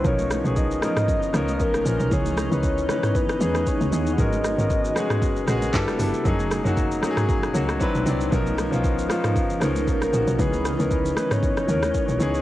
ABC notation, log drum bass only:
X:1
M:4/4
L:1/16
Q:"Swing 16ths" 1/4=116
K:B
V:1 name="Log drum bass" clef=bass
B,,,3 B,,,3 z4 C,,2 A,,,2 A,,, B,,, | C,,3 C,,3 z4 E,,2 z C,, D,,2 | G,,,3 G,,,3 z4 A,,,2 =G,,, z G,,, z | F,,,3 F,,,3 z4 C,,2 z B,,, =C,,2 |
B,,,3 B,,,3 z4 C,,2 A,,,2 A,,, B,,, | C,,3 C,,3 z4 D,,2 z B,,, C,,2 |]